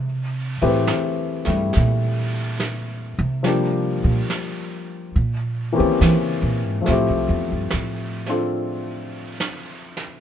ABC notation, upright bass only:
X:1
M:4/4
L:1/16
Q:"Swing" 1/4=70
K:Am
V:1 name="Upright bass" clef=bass
C,2 A,,2 z2 G,,2 _B,,6 C,2- | C,2 _B,,2 z4 B,,3 _E, =E, _D, B,, _A,, | A,, C,, E,, G,, A,,8 z4 |]